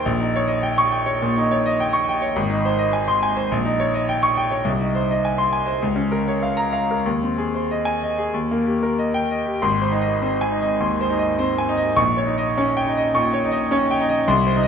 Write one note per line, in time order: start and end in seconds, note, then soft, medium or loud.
0.00 0.10 D#2 medium
0.00 0.11 D#4 medium
0.00 0.10 C5 medium
0.00 0.11 D#5 medium
0.00 0.10 G5 medium
0.00 0.10 C6 medium
0.06 1.18 A#1 medium
0.20 0.44 D#4 medium
0.36 0.59 C#5 medium
0.48 0.72 D#5 medium
0.63 0.87 G5 medium
0.78 1.02 C#6 medium
0.92 1.16 G5 medium
1.06 1.31 C#5 medium
1.22 1.46 A#2 medium
1.37 1.61 D#4 medium
1.51 1.75 C#5 medium
1.66 1.89 D#5 medium
1.80 2.03 G5 medium
1.93 2.17 C#6 medium
2.09 2.32 G5 medium
2.22 2.37 C#5 medium
2.36 3.49 G#1 medium
2.50 2.74 D#4 medium
2.65 2.89 C5 medium
2.78 3.03 D#5 medium
2.93 3.17 G#5 medium
3.08 3.32 C6 medium
3.23 3.47 G#5 medium
3.37 3.52 C5 medium
3.52 4.64 A#1 medium
3.65 3.89 D#4 medium
3.80 4.04 C#5 medium
3.94 4.18 D#5 medium
4.09 4.33 G5 medium
4.23 4.47 C#6 medium
4.37 4.61 G5 medium
4.51 4.67 C#5 medium
4.65 5.78 C2 medium
4.81 5.04 D#4 soft
4.95 5.19 C5 medium
5.11 5.34 D#5 medium
5.25 5.48 G#5 medium
5.38 5.62 C6 medium
5.53 5.77 G#5 medium
5.66 5.82 C5 medium
5.82 7.02 C#2 medium
5.96 6.21 C#4 medium
6.12 6.36 A#4 medium
6.28 6.52 C#5 soft
6.43 6.68 F5 medium
6.57 6.83 A#5 medium
6.73 6.99 F5 medium
6.91 7.07 A#4 soft
7.06 8.30 D#2 medium
7.23 7.49 C4 soft
7.38 7.64 G#4 soft
7.55 7.80 C5 soft
7.71 7.96 D#5 soft
7.85 8.11 G#5 medium
8.03 8.28 D#5 soft
8.18 8.34 G#4 soft
8.34 9.58 D#2 medium
8.51 8.77 A#3 soft
8.67 8.93 G4 soft
8.83 9.08 A#4 soft
8.99 9.24 D#5 soft
9.14 9.40 G5 medium
9.31 9.56 D#5 soft
9.46 9.61 G4 soft
9.62 10.77 G#1 medium
9.62 9.94 C6 medium
9.82 10.14 C5 medium
9.92 10.39 D#4 medium
10.02 10.33 D#5 medium
10.22 10.69 C4 soft
10.22 10.53 C5 medium
10.41 10.73 G#5 medium
10.52 10.98 D#4 soft
10.62 10.92 D#5 soft
10.80 11.27 D#2 medium
10.80 11.12 C6 medium
11.01 11.32 C5 medium
11.10 11.57 D#4 medium
11.19 11.50 D#5 medium
11.39 11.86 C4 medium
11.39 11.70 C5 medium
11.58 11.90 G#5 medium
11.69 11.98 D#4 medium
11.77 11.97 D#5 medium
11.96 13.09 A#1 medium
11.96 12.28 C#6 medium
12.17 12.48 C#5 medium
12.26 12.73 D#4 medium
12.38 12.68 D#5 medium
12.57 13.03 C#4 medium
12.57 12.88 C#5 medium
12.77 13.07 G5 medium
12.87 13.31 D#4 medium
12.97 13.26 D#5 medium
13.14 13.59 A#2 medium
13.14 13.44 C#6 medium
13.33 13.63 C#5 medium
13.44 13.88 D#4 medium
13.52 13.82 D#5 medium
13.71 14.16 C#4 medium
13.71 14.01 C#5 medium
13.91 14.20 G5 medium
14.00 14.28 D#4 medium
14.09 14.28 D#5 medium
14.28 14.68 C2 medium
14.28 14.58 C6 medium
14.46 14.68 C5 medium
14.56 14.68 D#4 medium
14.63 14.68 D#5 medium